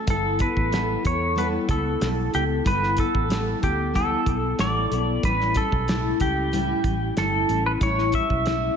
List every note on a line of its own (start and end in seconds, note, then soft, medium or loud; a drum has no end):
0.07 0.46 G1 loud
0.07 0.39 G3 medium
0.07 0.40 B3 medium
0.07 0.39 E4 medium
0.07 0.37 A4 medium
0.07 0.42 A4 medium
0.07 kick loud
0.07 closed hi-hat loud
0.38 0.71 B3 soft
0.38 0.72 E4 medium
0.38 0.71 A4 medium
0.38 1.06 B4 medium
0.38 kick loud
0.38 closed hi-hat medium
0.57 0.95 A1 medium
0.57 kick medium
0.71 1.04 G3 medium
0.71 1.04 B3 medium
0.71 1.03 E4 medium
0.71 1.02 A4 medium
0.71 snare loud
0.71 closed hi-hat medium
1.03 1.57 E2 medium
1.03 1.35 B3 soft
1.03 1.36 E4 soft
1.03 1.36 A4 medium
1.03 1.39 C#5 medium
1.03 kick medium
1.03 closed hi-hat medium
1.35 1.68 G3 medium
1.35 1.69 B3 medium
1.35 1.67 E4 medium
1.35 1.66 A4 loud
1.35 1.47 B4 loud
1.35 closed hi-hat medium
1.67 1.95 C#2 medium
1.67 2.00 B3 soft
1.67 2.01 E4 medium
1.67 2.00 A4 medium
1.67 2.30 A4 medium
1.67 kick loud
1.67 closed hi-hat medium
2.00 2.27 B1 loud
2.00 2.33 G3 medium
2.00 2.33 B3 medium
2.00 2.33 E4 medium
2.00 2.31 A4 medium
2.00 snare loud
2.00 closed hi-hat medium
2.32 2.60 C#2 loud
2.32 2.63 B3 soft
2.32 2.64 E4 medium
2.32 2.43 G4 medium
2.32 2.65 A4 medium
2.32 closed hi-hat medium
2.64 3.04 G1 loud
2.64 2.97 G3 medium
2.64 2.97 B3 medium
2.64 2.97 E4 medium
2.64 2.96 A4 medium
2.64 3.00 B4 loud
2.64 kick loud
2.64 closed hi-hat loud
2.83 snare soft
2.97 3.29 B3 soft
2.97 3.29 E4 medium
2.97 3.30 A4 medium
2.97 3.63 A4 medium
2.97 kick loud
2.97 closed hi-hat medium
3.15 3.53 A1 loud
3.15 kick medium
3.29 3.62 G3 medium
3.29 3.62 B3 medium
3.29 3.61 E4 medium
3.29 3.59 A4 medium
3.29 snare loud
3.29 closed hi-hat medium
3.61 4.14 D2 medium
3.61 3.93 B3 soft
3.61 3.93 E4 soft
3.61 3.96 G4 medium
3.61 3.94 A4 medium
3.61 kick medium
3.61 closed hi-hat medium
3.93 4.26 G3 medium
3.93 4.27 B3 medium
3.93 4.26 E4 medium
3.93 4.24 A4 loud
3.93 4.61 A4 loud
3.93 kick medium
3.93 closed hi-hat medium
4.25 4.52 B1 medium
4.25 4.58 B3 soft
4.25 4.59 E4 medium
4.25 4.58 A4 medium
4.25 kick medium
4.25 closed hi-hat medium
4.58 4.85 A1 loud
4.58 4.91 G3 medium
4.58 4.91 B3 medium
4.58 4.90 E4 medium
4.58 4.89 A4 medium
4.58 5.26 D5 loud
4.58 snare loud
4.58 closed hi-hat loud
4.90 5.17 B1 medium
4.90 5.24 B3 soft
4.90 5.24 E4 medium
4.90 5.23 A4 medium
4.90 closed hi-hat medium
5.23 5.62 A1 medium
5.23 5.55 A2 medium
5.23 5.56 G3 medium
5.23 5.56 C#4 medium
5.23 5.54 E4 medium
5.23 5.57 B4 loud
5.23 kick loud
5.23 closed hi-hat loud
5.41 snare soft
5.54 5.87 G3 soft
5.54 5.88 C#4 medium
5.54 5.88 E4 medium
5.54 6.21 A4 loud
5.54 kick medium
5.54 closed hi-hat medium
5.72 6.11 B1 medium
5.72 kick medium
5.87 6.20 A2 medium
5.87 6.20 G3 medium
5.87 6.20 C#4 medium
5.87 6.18 E4 medium
5.87 snare loud
5.87 closed hi-hat medium
6.19 6.72 C#2 medium
6.19 6.51 G3 soft
6.19 6.52 C#4 medium
6.19 6.52 E4 soft
6.19 7.13 G4 loud
6.19 kick medium
6.19 closed hi-hat medium
6.52 6.84 A2 medium
6.52 6.85 G3 medium
6.52 6.84 C#4 medium
6.52 6.83 E4 loud
6.52 closed hi-hat medium
6.84 7.10 A1 medium
6.84 7.16 G3 soft
6.84 7.17 C#4 soft
6.84 7.16 E4 medium
6.84 kick loud
6.84 closed hi-hat medium
7.16 7.43 G1 medium
7.16 7.49 A2 medium
7.16 7.49 G3 medium
7.16 7.49 C#4 medium
7.16 7.47 E4 medium
7.16 7.66 A4 loud
7.16 snare loud
7.16 closed hi-hat loud
7.49 7.75 A1 medium
7.49 7.80 G3 soft
7.49 7.81 C#4 medium
7.49 7.81 E4 medium
7.49 closed hi-hat medium
7.66 7.71 B4 loud
7.81 8.20 A1 loud
7.81 8.13 A2 medium
7.81 8.14 G3 medium
7.81 8.14 C#4 medium
7.81 8.13 E4 loud
7.81 8.15 C#5 loud
7.81 kick loud
7.81 closed hi-hat medium
7.99 snare soft
8.12 8.46 C#4 medium
8.12 8.46 E4 medium
8.12 8.77 E5 loud
8.12 kick medium
8.12 closed hi-hat medium
8.17 8.45 G3 medium
8.30 8.69 B1 medium
8.30 kick medium
8.45 8.77 A2 medium
8.45 8.77 G3 medium
8.45 8.77 C#4 medium
8.45 8.76 E4 medium
8.45 snare loud
8.45 closed hi-hat medium